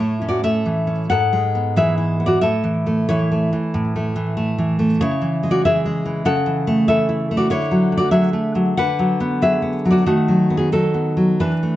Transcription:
0.00 1.06 A2 medium
0.00 0.42 A3 soft
0.00 0.21 E4 medium
0.00 0.25 C#5 medium
0.22 0.86 C#4 soft
0.28 0.43 F#4 soft
0.28 0.43 D5 medium
0.43 1.10 A3 soft
0.43 1.06 A4 medium
0.43 1.07 E5 medium
0.66 1.10 E3 soft
0.87 1.09 C#4 soft
1.10 2.39 G#2 medium
1.10 1.73 A4 medium
1.10 1.73 F#5 medium
1.33 2.31 G#3 soft
1.55 2.19 B3 soft
1.76 2.42 E3 soft
1.76 2.19 G#4 medium
1.76 1.97 E5 medium
1.98 2.26 E4 soft
2.20 2.42 B3 soft
2.26 2.42 F#4 soft
2.26 2.41 D5 medium
2.41 3.52 A2 medium
2.41 3.05 A4 medium
2.41 3.06 E5 medium
2.64 3.08 E3 soft
2.87 3.30 A3 soft
3.09 3.51 E3 soft
3.09 4.97 E4 medium
3.09 4.96 C#5 medium
3.32 3.95 A3 soft
3.53 4.15 E3 soft
3.74 4.96 A2 medium
3.96 4.36 A3 soft
4.16 4.57 E3 soft
4.37 4.78 A3 soft
4.58 5.00 E3 soft
4.79 5.00 A3 soft
5.01 6.21 C#3 medium
5.01 5.46 E4 medium
5.01 5.46 C#5 medium
5.22 5.64 E3 soft
5.43 5.84 G#3 soft
5.51 5.64 F#4 soft
5.51 5.65 D5 medium
5.65 6.04 E3 soft
5.65 6.21 G#4 medium
5.65 6.22 E5 medium
5.86 6.25 G#3 soft
6.06 6.25 E3 soft
6.25 7.46 C#3 medium
6.25 6.84 A4 medium
6.25 6.85 F#5 medium
6.46 6.87 E3 soft
6.67 7.30 A3 medium
6.88 7.50 E3 soft
6.88 7.32 A4 medium
6.88 7.33 E5 medium
7.09 7.50 E4 soft
7.31 7.50 A3 soft
7.37 7.50 F#4 soft
7.37 7.50 D5 medium
7.50 8.74 D3 medium
7.50 7.92 E4 medium
7.50 7.95 C#5 medium
7.71 8.10 F#3 soft
7.92 8.32 A3 soft
7.97 8.12 F#4 soft
7.97 8.11 D5 medium
8.11 8.33 F#3 soft
8.11 8.73 G#4 medium
8.11 8.74 E5 medium
8.33 8.77 A3 soft
8.55 8.77 F#3 soft
8.77 10.04 D3 medium
8.77 9.39 B4 medium
8.77 9.40 F#5 medium
8.99 9.41 F#3 soft
9.20 9.61 B3 soft
9.42 9.84 F#3 soft
9.42 9.88 G#4 medium
9.42 9.89 E5 medium
9.62 10.07 B3 soft
9.85 10.07 F#3 soft
9.91 10.05 F#4 medium
9.91 10.07 D5 medium
10.06 11.37 D#3 medium
10.06 10.54 A3 medium
10.06 10.55 F#4 medium
10.28 10.71 F#3 soft
10.50 10.57 B3 soft
10.57 10.73 B3 soft
10.57 10.72 G#4 medium
10.72 11.16 F#3 soft
10.72 11.37 D#4 medium
10.72 11.38 A4 medium
10.94 11.40 B3 soft
11.17 11.40 F#3 soft
11.40 11.76 E3 medium
11.40 11.76 D4 medium
11.40 11.76 B4 medium
11.63 11.76 A3 soft

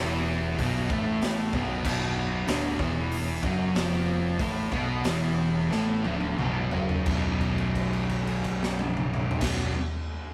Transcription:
0.00 0.55 E1 loud
0.00 0.58 E2 medium
0.00 0.59 E3 loud
0.59 0.88 B0 loud
0.59 0.90 B1 loud
0.59 0.90 B2 loud
0.59 kick loud
0.59 open hi-hat medium
0.90 1.49 A1 loud
0.90 1.53 A2 medium
0.90 1.54 A3 loud
0.90 kick loud
1.22 snare loud
1.22 open hi-hat medium
1.53 1.83 B0 medium
1.53 1.84 B1 loud
1.53 1.85 B2 loud
1.53 kick loud
1.85 2.44 B0 loud
1.85 2.47 B1 medium
1.85 2.48 B2 loud
1.85 kick loud
1.85 crash loud
2.48 2.78 D1 loud
2.48 2.81 D2 medium
2.48 2.83 D3 loud
2.48 snare loud
2.48 open hi-hat medium
2.79 3.40 E1 loud
2.79 3.44 E2 medium
2.79 3.44 E3 loud
2.79 kick loud
3.11 open hi-hat medium
3.43 3.73 F#1 loud
3.43 3.76 F#2 medium
3.43 3.76 F#3 loud
3.43 kick loud
3.43 snare soft
3.75 4.37 F1 loud
3.75 4.40 F2 loud
3.75 4.40 F3 loud
3.75 snare loud
3.75 open hi-hat medium
4.39 4.70 A1 loud
4.39 4.73 A2 loud
4.39 4.73 A3 loud
4.39 kick loud
4.39 open hi-hat medium
4.72 5.03 B1 loud
4.72 5.05 B2 loud
4.72 5.05 B3 loud
4.72 kick loud
5.04 5.68 E1 loud
5.04 5.70 E2 medium
5.04 5.71 E3 loud
5.04 snare loud
5.04 open hi-hat medium
5.70 6.03 A1 loud
5.70 6.04 A2 loud
5.70 6.04 A3 loud
5.70 snare medium
6.04 6.36 D1 loud
6.04 6.37 D2 medium
6.04 6.38 D3 medium
6.04 high tom medium
6.21 high tom medium
6.38 6.71 B0 loud
6.38 6.71 B1 medium
6.38 6.72 B2 loud
6.38 mid tom medium
6.71 7.05 F#1 loud
6.71 7.05 F#2 medium
6.71 7.06 F#3 loud
6.71 floor tom loud
6.89 floor tom loud
7.05 9.29 B0 medium
7.05 9.40 B1 medium
7.05 9.42 F#2 loud
7.05 9.44 B2 loud
7.05 kick loud
7.05 crash medium
7.41 kick medium
7.41 crash soft
7.58 crash medium
7.75 kick medium
7.75 crash medium
7.93 crash medium
8.09 kick medium
8.09 crash medium
8.27 crash medium
8.44 kick medium
8.44 crash medium
8.63 snare loud
8.79 high tom loud
8.97 mid tom medium
9.14 mid tom loud
9.31 floor tom loud
9.41 9.70 B0 loud
9.41 9.72 B1 loud
9.41 9.73 F#2 loud
9.41 9.74 B2 loud
9.41 kick loud
9.41 snare loud
9.41 crash loud

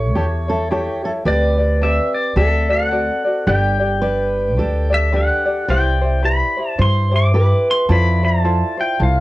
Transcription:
0.00 0.15 A1 medium
0.00 0.14 E4 medium
0.00 0.14 G4 medium
0.00 0.15 A4 medium
0.00 0.16 A4 medium
0.00 0.15 C#5 medium
0.00 1.01 C#5 medium
0.15 0.87 E2 medium
0.15 0.49 E4 medium
0.15 0.48 G4 medium
0.15 0.24 G4 medium
0.15 0.48 A4 medium
0.15 0.47 C#5 medium
0.48 0.70 E4 soft
0.48 0.70 A4 soft
0.48 0.71 A4 medium
0.48 0.70 C#5 medium
0.70 1.04 E4 medium
0.70 1.04 G4 medium
0.70 1.05 G4 medium
0.70 1.04 A4 medium
0.70 1.03 C#5 medium
1.04 1.25 E4 soft
1.04 1.24 A4 soft
1.04 1.11 A4 medium
1.04 1.26 C#5 medium
1.25 1.98 D2 medium
1.25 1.59 C4 medium
1.25 1.58 G4 medium
1.25 1.59 A4 medium
1.25 2.36 B4 medium
1.25 1.57 D5 loud
1.25 1.84 D5 medium
1.58 1.80 C4 soft
1.58 1.81 G4 medium
1.58 1.81 D5 medium
1.81 2.35 C4 medium
1.81 2.37 G4 medium
1.81 2.35 A4 medium
1.81 2.36 D5 medium
1.81 2.16 E5 medium
2.14 2.37 D5 medium
2.36 3.08 D2 loud
2.36 2.70 C4 medium
2.36 2.69 F#4 medium
2.36 2.69 A4 medium
2.36 3.47 A4 medium
2.36 2.68 D5 medium
2.36 2.70 E5 medium
2.69 2.90 C4 soft
2.69 2.91 F#4 soft
2.69 2.92 D5 medium
2.69 3.47 F#5 medium
2.91 3.25 C4 medium
2.91 3.24 F#4 medium
2.91 3.25 A4 medium
2.91 3.23 D5 medium
3.25 3.48 C4 soft
3.25 3.47 F#4 soft
3.25 3.47 D5 soft
3.47 4.57 G1 medium
3.47 3.81 D4 medium
3.47 4.01 G4 medium
3.47 3.80 G4 medium
3.47 3.80 B4 medium
3.47 3.78 D5 medium
3.47 5.09 G5 medium
3.80 4.01 D4 soft
3.80 4.01 G4 soft
3.80 4.01 D5 medium
4.02 4.57 D4 medium
4.02 4.58 G4 medium
4.02 4.53 B4 medium
4.02 4.57 B4 medium
4.02 4.58 D5 medium
4.57 5.29 D2 medium
4.57 4.91 D4 medium
4.57 4.90 G4 medium
4.57 5.13 A4 medium
4.57 4.91 B4 medium
4.57 4.89 D5 medium
4.90 5.12 D4 soft
4.90 5.12 G4 medium
4.90 5.13 D5 medium
4.94 5.15 E5 medium
5.12 5.46 D4 medium
5.12 5.46 G4 medium
5.12 5.65 G4 medium
5.12 5.46 B4 medium
5.12 5.44 D5 medium
5.12 5.70 F#5 medium
5.46 5.69 D4 soft
5.46 5.69 G4 soft
5.46 5.68 D5 medium
5.68 6.40 C2 medium
5.68 6.02 E4 medium
5.68 6.01 G4 medium
5.68 6.02 B4 medium
5.68 6.00 C5 loud
5.68 6.78 D5 medium
5.68 6.26 G5 medium
6.02 6.22 E4 soft
6.02 6.22 G4 soft
6.02 6.24 C5 medium
6.23 6.57 E4 medium
6.23 6.57 G4 medium
6.23 6.56 B4 medium
6.23 6.56 C5 medium
6.23 6.69 B5 medium
6.57 6.78 E4 soft
6.57 6.78 G4 soft
6.57 6.79 C5 soft
6.69 6.81 A5 medium
6.78 7.51 G2 loud
6.78 7.12 E4 medium
6.78 7.11 G4 medium
6.78 7.12 B4 medium
6.78 7.34 C5 medium
6.78 7.10 C5 medium
6.78 7.15 C6 loud
7.11 7.34 E4 soft
7.11 7.34 G4 soft
7.11 7.34 C5 medium
7.16 7.70 D6 loud
7.34 7.90 E4 medium
7.34 7.90 G4 medium
7.34 7.89 B4 medium
7.34 7.88 B4 medium
7.71 7.92 C6 medium
7.89 8.61 F2 loud
7.89 8.22 E4 loud
7.89 8.23 F4 medium
7.89 8.22 A4 medium
7.89 8.22 C5 loud
7.89 9.20 D5 medium
7.89 8.25 B5 loud
8.23 8.44 E4 medium
8.23 8.43 F4 medium
8.23 8.44 C5 medium
8.23 8.81 A5 medium
8.44 8.77 E4 medium
8.44 8.78 F4 medium
8.44 8.78 A4 medium
8.44 8.76 C5 medium
8.77 9.00 E4 soft
8.77 8.99 F4 soft
8.77 9.00 C5 medium
8.77 9.02 G5 medium
8.99 9.20 C2 loud
8.99 9.20 E4 medium
8.99 9.20 F4 medium
8.99 9.20 A4 medium
8.99 9.20 C5 medium
8.99 9.20 F5 medium

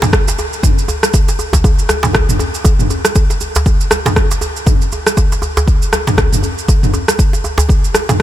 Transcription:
0.02 mid tom medium
0.02 djembe slap loud
0.02 shaker medium
0.13 kick loud
0.13 cross-stick loud
0.13 djembe tone medium
0.13 shaker medium
0.28 djembe slap medium
0.28 shaker loud
0.38 djembe tone loud
0.38 shaker medium
0.53 shaker medium
0.63 kick loud
0.63 mid tom medium
0.63 djembe tone medium
0.63 shaker loud
0.78 shaker medium
0.88 djembe tone loud
0.88 shaker medium
1.03 cross-stick medium
1.03 shaker loud
1.14 kick loud
1.14 djembe tone loud
1.14 shaker loud
1.28 djembe slap medium
1.28 shaker medium
1.39 djembe tone medium
1.39 shaker medium
1.53 kick medium
1.53 djembe slap loud
1.53 djembe bass medium
1.53 shaker loud
1.64 kick loud
1.64 djembe tone medium
1.64 shaker medium
1.79 shaker medium
1.89 cross-stick medium
1.89 djembe tone loud
1.89 shaker loud
2.03 mid tom medium
2.03 djembe slap loud
2.03 shaker medium
2.13 kick loud
2.13 cross-stick loud
2.13 djembe tone medium
2.13 djembe bass medium
2.13 shaker medium
2.29 mid tom medium
2.29 shaker loud
2.39 djembe tone loud
2.39 shaker medium
2.54 shaker medium
2.65 kick loud
2.65 djembe tone loud
2.65 shaker loud
2.79 mid tom medium
2.79 shaker medium
2.90 djembe tone medium
2.90 shaker medium
3.05 cross-stick medium
3.05 shaker loud
3.15 kick loud
3.15 djembe tone medium
3.15 shaker medium
3.30 djembe slap medium
3.30 shaker medium
3.41 djembe tone medium
3.41 shaker medium
3.55 djembe slap loud
3.55 djembe bass medium
3.55 shaker loud
3.66 kick loud
3.66 djembe tone medium
3.66 shaker medium
3.81 shaker medium
3.91 cross-stick medium
3.91 djembe tone loud
3.91 shaker medium
4.06 mid tom medium
4.06 djembe slap loud
4.06 shaker medium
4.16 kick loud
4.16 cross-stick medium
4.16 djembe tone medium
4.16 shaker medium
4.31 djembe slap medium
4.31 shaker medium
4.41 djembe tone medium
4.41 shaker medium
4.56 shaker medium
4.66 kick loud
4.66 mid tom medium
4.66 djembe tone loud
4.66 shaker loud
4.82 shaker medium
4.92 djembe tone medium
4.92 shaker medium
5.07 cross-stick medium
5.07 shaker medium
5.17 kick loud
5.17 djembe tone medium
5.17 shaker medium
5.32 djembe slap medium
5.32 shaker medium
5.42 djembe tone medium
5.42 shaker medium
5.57 djembe slap loud
5.57 djembe bass loud
5.57 shaker medium
5.67 kick loud
5.67 djembe tone medium
5.67 shaker medium
5.82 shaker medium
5.93 cross-stick medium
5.93 djembe tone medium
5.93 shaker medium
6.07 mid tom medium
6.07 djembe slap loud
6.07 shaker medium
6.18 kick loud
6.18 cross-stick medium
6.18 djembe tone loud
6.18 djembe bass medium
6.18 shaker medium
6.33 mid tom medium
6.33 shaker loud
6.43 djembe tone medium
6.43 shaker medium
6.58 shaker soft
6.68 kick loud
6.68 djembe tone medium
6.68 shaker loud
6.83 mid tom medium
6.83 shaker medium
6.94 djembe tone medium
6.94 shaker medium
7.08 cross-stick medium
7.08 shaker medium
7.18 kick loud
7.18 djembe tone medium
7.18 shaker medium
7.33 djembe slap medium
7.33 shaker medium
7.44 djembe tone medium
7.44 shaker soft
7.58 djembe slap loud
7.58 djembe bass loud
7.58 shaker medium
7.69 kick loud
7.69 djembe tone medium
7.69 shaker medium
7.84 shaker medium
7.94 cross-stick medium
7.94 djembe tone medium
7.94 shaker medium
8.09 mid tom loud
8.09 djembe slap loud
8.09 shaker medium

